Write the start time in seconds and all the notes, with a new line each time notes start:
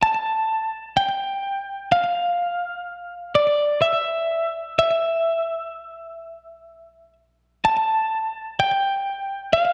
0.03 A5
0.97 G5
1.92 F5
3.35 D5
3.82 E5
4.79 E5
7.65 A5
8.60 G5
9.53 F5